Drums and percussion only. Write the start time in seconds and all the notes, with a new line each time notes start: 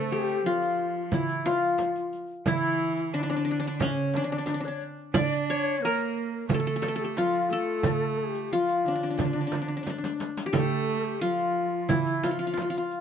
0.28 riq, darbuka ka
0.62 riq
0.79 darbuka ka
1.11 riq, frame drum, darbuka dum
1.29 riq, darbuka ka
1.46 riq, darbuka tek, frame drum
1.78 riq, darbuka tek, frame drum
1.96 riq
2.13 riq
2.46 riq, frame drum, darbuka dum
2.96 riq, darbuka ka
3.30 riq
3.47 darbuka ka
3.80 riq, frame drum, darbuka dum
3.96 riq, darbuka ka
4.14 darbuka tek, frame drum
4.47 riq, darbuka tek, frame drum
4.64 riq
4.81 riq, darbuka ka
5.14 riq, frame drum, darbuka dum
5.65 riq, darbuka ka
5.99 riq
6.16 darbuka ka
6.49 riq, darbuka dum, frame drum
6.66 riq, darbuka ka
6.83 riq, darbuka tek, frame drum
7.17 riq, darbuka tek, frame drum
7.33 riq
7.50 riq, darbuka ka
7.83 riq, frame drum, darbuka dum
8.19 darbuka ka
8.35 riq, darbuka ka
8.69 riq, darbuka ka
8.86 riq, darbuka ka
9.03 riq, darbuka ka
9.19 riq, frame drum, darbuka dum
9.52 riq, darbuka tek, frame drum
9.87 riq, darbuka tek, frame drum
10.04 riq, darbuka ka
10.20 riq, darbuka tek
10.37 riq, darbuka ka
10.53 riq, frame drum, darbuka dum
11.05 riq
11.39 riq
11.56 darbuka ka
11.89 riq, darbuka dum, frame drum
12.07 riq, darbuka ka
12.24 riq, darbuka tek, frame drum
12.57 riq, darbuka tek, frame drum
12.74 riq
12.91 riq, darbuka ka